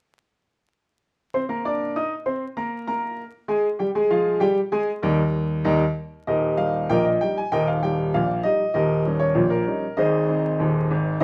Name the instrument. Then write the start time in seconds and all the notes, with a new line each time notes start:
upright piano
1.34 C4 C5 C6
1.49 A#3 A#4 A#5
1.65 D4 D5 D6
1.96 D#4 D#5 D#6
2.26 C4 C5 C6
2.57 A#3 A#4 A#5
2.87 A#3 A#4 A#5
3.48 G#3 G#4 G#5
3.79 G3 G4 G5
3.95 G#3 G#4 G#5
4.10 F3 F4 F5
4.40 G3 G4 G5
4.72 G#3 G#4 G#5
5.02 D#2 G3 D#4 A#4
5.64 D#2 G3 D#4 A#4
6.27 D#1 D#2 G4 A#4 D#5
6.57 G3 D#4 G4 F5
6.90 A#1 A#2 A#4 D#5 G5
7.05 D#5
7.21 G3 D#4 G4 G5
7.37 G#5
7.52 D#1 D#2 A#4 D#5 G5
7.68 F5
7.83 G3 D#4 G4 G5
8.14 A#1 A#2 F5
8.43 G3 D#4 G4 D#5
8.74 D#1 D#2 G4 A#4 D#5
9.06 G3 C#4 D#4
9.19 C#5
9.35 A#1 A#2
9.50 A#4
9.66 G3 C#4 D#4
9.97 G#1 G#2 G#4 C5 D#5
10.29 G#3 C4 D#4
10.60 D#1 D#2
10.91 G#1 G#2
11.20 A1 A2 D#5